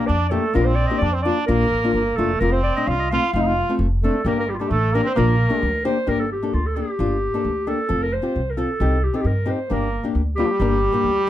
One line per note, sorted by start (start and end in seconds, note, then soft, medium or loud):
0.00 0.14 A#3 medium
0.00 0.15 D4 medium
0.00 0.15 G4 medium
0.07 0.37 F2 medium
0.07 0.30 D4 medium
0.07 0.32 D5 medium
0.31 0.55 A3 medium
0.31 0.43 A#3 medium
0.31 0.44 D4 medium
0.31 0.43 G4 medium
0.31 0.56 A4 medium
0.54 0.83 A#1 loud
0.54 0.72 A#3 medium
0.54 0.59 A#3 medium
0.54 0.72 D4 medium
0.54 0.73 F4 medium
0.54 0.66 A#4 loud
0.58 0.63 C4 medium
0.62 0.68 A#3 medium
0.62 0.76 C5 medium
0.66 1.04 C4 medium
0.75 0.88 D5 medium
0.87 1.08 A#3 medium
0.87 1.08 D4 medium
0.87 0.97 D#5 medium
0.91 1.08 G4 medium
0.98 1.29 F2 medium
0.98 1.11 D5 medium
1.02 1.16 D4 medium
1.12 1.25 C4 medium
1.12 1.21 C5 medium
1.22 1.37 A#3 medium
1.22 1.48 D4 medium
1.22 1.37 D4 medium
1.22 1.37 F4 medium
1.22 1.45 D5 medium
1.47 1.63 A#1 loud
1.47 1.66 A#3 medium
1.47 1.91 A#3 medium
1.47 1.66 D4 medium
1.47 1.66 F4 medium
1.47 2.18 A#4 loud
1.71 1.92 A1 medium
1.84 2.01 A#3 medium
1.84 2.01 D4 medium
1.84 2.01 F4 medium
1.94 2.15 G1 medium
1.94 2.20 A#3 medium
2.16 2.38 F1 medium
2.16 2.41 A3 medium
2.16 2.30 A#3 medium
2.16 2.30 D4 medium
2.16 2.30 F4 medium
2.16 2.41 A4 medium
2.40 2.68 F1 medium
2.40 2.58 A3 medium
2.40 2.54 A#3 medium
2.40 2.58 C4 medium
2.40 2.59 F4 medium
2.40 2.52 A#4 loud
2.52 2.89 C4 medium
2.52 2.63 C5 medium
2.63 2.74 D5 medium
2.76 2.94 A3 medium
2.76 2.94 C4 medium
2.76 2.94 D4 medium
2.76 2.88 D#5 medium
2.87 3.15 C2 medium
2.87 3.11 F4 medium
2.87 2.99 F5 medium
2.99 3.12 D#5 medium
3.10 3.23 A3 medium
3.10 3.23 C4 medium
3.10 3.32 F4 loud
3.10 3.23 F4 medium
3.10 3.33 F5 loud
3.33 3.61 F1 medium
3.33 3.52 A3 medium
3.33 3.52 C4 medium
3.33 3.52 D#4 medium
3.33 3.43 F4 medium
3.33 3.72 F5 loud
3.41 3.48 D#4 medium
3.47 3.75 F4 medium
3.69 3.86 A3 medium
3.69 3.86 C4 medium
3.69 3.86 F4 medium
3.79 4.06 F1 medium
4.02 4.24 A3 medium
4.02 4.14 A3 medium
4.02 4.15 C4 medium
4.02 4.15 D4 medium
4.02 4.29 A4 medium
4.25 4.52 G1 medium
4.25 4.35 A#3 medium
4.25 4.43 A#3 medium
4.25 4.43 D4 medium
4.25 4.43 G4 medium
4.25 4.38 A#4 loud
4.36 4.49 A#3 medium
4.36 4.51 A#4 medium
4.48 4.58 G3 medium
4.48 4.56 G4 medium
4.54 4.61 F4 medium
4.59 4.69 G3 medium
4.59 4.77 A#3 medium
4.59 4.77 D4 medium
4.59 4.71 G4 medium
4.59 4.77 A4 medium
4.68 4.98 A1 medium
4.68 4.94 A3 medium
4.68 4.96 A4 medium
4.92 5.03 A#3 medium
4.92 5.06 A#3 medium
4.92 5.06 D4 medium
4.92 5.06 G4 medium
4.92 5.09 A#4 medium
5.04 5.15 C4 medium
5.04 5.19 C5 loud
5.16 5.45 A#1 loud
5.16 5.81 A#3 medium
5.16 5.34 A#3 medium
5.16 5.34 D4 medium
5.16 5.34 F4 medium
5.16 5.84 A#4 loud
5.50 5.67 A#3 medium
5.50 5.68 D4 medium
5.50 5.68 G4 medium
5.62 5.90 D2 medium
5.85 5.96 A#3 medium
5.85 5.96 D4 medium
5.85 5.96 G4 loud
5.85 6.10 C5 loud
6.07 6.35 G1 medium
6.07 6.25 A#3 medium
6.07 6.24 D4 medium
6.07 6.25 G4 medium
6.07 6.21 A#4 loud
6.20 6.31 A4 medium
6.32 6.55 G4 medium
6.43 6.60 A#3 medium
6.43 6.60 D4 medium
6.43 6.60 A4 medium
6.54 6.81 D2 medium
6.54 6.68 F4 medium
6.66 6.77 A4 medium
6.76 6.88 A#3 medium
6.76 6.88 D4 medium
6.76 7.70 G4 medium
6.76 6.88 G4 medium
6.99 7.26 G1 medium
6.99 7.16 A#3 medium
6.99 7.17 D4 medium
6.99 7.17 F4 medium
7.34 7.50 A#3 medium
7.34 7.51 D4 medium
7.34 7.51 A4 medium
7.45 7.72 D2 medium
7.67 7.78 A#3 medium
7.67 7.78 D4 medium
7.67 7.79 G4 medium
7.67 8.04 A4 medium
7.89 8.17 F1 medium
7.89 8.06 C4 medium
7.89 8.06 F4 medium
7.89 8.06 A4 medium
8.03 8.14 A#4 medium
8.13 8.52 C5 medium
8.22 8.40 C4 medium
8.22 8.40 F4 medium
8.22 8.40 G4 medium
8.36 8.62 C2 medium
8.50 8.59 A#4 medium
8.57 8.69 C4 medium
8.57 8.69 F4 medium
8.57 9.05 A4 medium
8.57 8.69 A4 medium
8.80 9.07 C2 medium
8.80 8.97 C4 medium
8.80 8.97 D#4 medium
8.80 8.97 G4 medium
9.04 9.14 G4 medium
9.13 9.30 C4 medium
9.13 9.31 D#4 soft
9.13 9.31 G4 medium
9.13 9.23 A4 medium
9.21 9.52 G2 medium
9.21 9.28 G4 medium
9.26 9.52 A#4 medium
9.46 9.58 C4 medium
9.46 9.58 D#4 medium
9.46 9.58 G4 medium
9.50 9.74 C5 medium
9.70 9.97 G1 medium
9.70 10.08 A#3 medium
9.70 9.87 A#3 medium
9.70 9.87 D4 medium
9.70 9.87 G4 medium
9.70 10.12 A#4 medium
10.04 10.20 A#3 medium
10.04 10.21 D4 soft
10.04 10.21 G4 medium
10.15 10.42 D2 medium
10.35 10.48 G3 medium
10.35 10.49 A#3 medium
10.35 10.48 D4 medium
10.35 10.49 F4 medium
10.35 11.29 G4 loud
10.46 10.52 F3 medium
10.51 11.29 G3 loud
10.60 10.86 G1 medium
10.60 10.77 A#3 medium
10.60 10.77 D4 medium
10.60 10.77 A#4 medium
10.92 11.09 A#3 medium
10.92 11.10 D4 medium
10.92 11.10 G4 medium
11.04 11.29 D2 medium